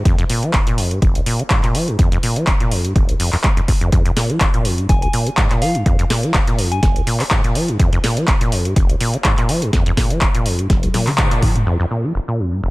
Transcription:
0.05 F2, kick, closed hi-hat
0.18 F2, closed hi-hat
0.30 A#2, open hi-hat
0.43 F3, closed hi-hat
0.53 F1, kick, clap, closed hi-hat
0.67 A#2, closed hi-hat
0.78 F2, open hi-hat
0.91 G2, closed hi-hat
1.02 F1, kick, closed hi-hat
1.15 F2, closed hi-hat
1.26 A#2, open hi-hat
1.39 D#3, closed hi-hat
1.50 G#2, kick, clap, closed hi-hat
1.63 A#2, clap, closed hi-hat
1.75 F3, open hi-hat
1.88 G2, closed hi-hat
1.99 F2, kick, closed hi-hat
2.12 F2, closed hi-hat
2.23 A#2, open hi-hat
2.36 F3, closed hi-hat
2.47 F1, kick, clap, closed hi-hat
2.60 A#2, closed hi-hat
2.71 F2, open hi-hat
2.85 G2, closed hi-hat
2.96 F1, kick, closed hi-hat
3.09 F2, closed hi-hat
3.20 F2, open hi-hat
3.33 F2, clap, open hi-hat
3.44 G#3, kick, clap, closed hi-hat
3.57 F2, closed hi-hat
3.68 F2, kick, open hi-hat
3.81 F2, closed hi-hat
3.92 F2, kick, closed hi-hat
4.05 F2, closed hi-hat
4.17 A#2, snare, open hi-hat
4.30 F3, closed hi-hat
4.40 F1, kick, clap, closed hi-hat
4.54 A#2, closed hi-hat
4.65 F2, open hi-hat
4.78 G2, closed hi-hat
4.89 F1 G#5, kick, closed hi-hat
5.02 F2 G#5, closed hi-hat
5.13 A#2, open hi-hat
5.26 D#3, closed hi-hat
5.37 G#2, kick, clap, closed hi-hat
5.50 A#2, clap, closed hi-hat
5.62 F3 F5, open hi-hat
5.75 G2, closed hi-hat
5.86 F2, kick, closed hi-hat
5.99 F2, closed hi-hat
6.10 A#2, snare, open hi-hat
6.23 F3, closed hi-hat
6.34 F1, kick, clap, closed hi-hat
6.47 A#2, closed hi-hat
6.58 F2, open hi-hat
6.72 G2 G#5, closed hi-hat
6.83 F1 G#5, kick, snare, closed hi-hat
6.96 F2, closed hi-hat
7.07 A#2, open hi-hat
7.20 D#3, clap, open hi-hat
7.31 G#2, kick, clap, closed hi-hat
7.44 A#2, closed hi-hat
7.55 F3, open hi-hat
7.68 G2, closed hi-hat
7.79 F2, kick, closed hi-hat
7.93 F2, closed hi-hat
8.04 A#2, snare, open hi-hat
8.17 F3, closed hi-hat
8.28 F1, kick, clap, closed hi-hat
8.41 A#2, closed hi-hat
8.52 F2, open hi-hat
8.65 G2, closed hi-hat
8.76 F1, kick, closed hi-hat
8.89 F2, closed hi-hat
9.00 A#2, open hi-hat
9.14 D#3, closed hi-hat
9.24 G#2, kick, clap, closed hi-hat
9.37 A#2, clap, closed hi-hat
9.49 F3, open hi-hat
9.62 G2, closed hi-hat
9.73 F2, kick, snare, closed hi-hat
9.86 F2, closed hi-hat
9.97 A#2, kick, snare, open hi-hat
10.10 F3, closed hi-hat
10.21 F1, kick, clap, closed hi-hat
10.35 A#2, closed hi-hat
10.46 F2, open hi-hat
10.59 G2, closed hi-hat
10.70 F1, kick, snare, closed hi-hat, high tom
10.83 F2, closed hi-hat, high tom
10.94 A#2, snare, open hi-hat, high tom
11.07 D#3, clap, open hi-hat, mid tom
11.18 G#2, kick, clap, closed hi-hat, mid tom
11.31 A#2, closed hi-hat
11.42 F3, kick, mid tom, open hi-hat
11.55 G2, closed hi-hat, mid tom
11.67 F2
11.80 F2
11.91 A#2
12.04 F3
12.15 F1
12.28 A#2
12.39 F2
12.52 G2
12.63 F1

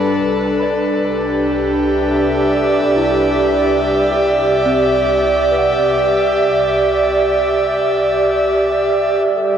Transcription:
Already playing: G1 G3 D4 A4 B4 B5
0.21 C2
0.63 D5
0.95 G4
1.78 E5
1.90 D5
2.97 E4
4.66 C4
5.51 B4
5.58 F#5
7.85 E5
8.51 G4
9.26 G1 G3
9.36 A4

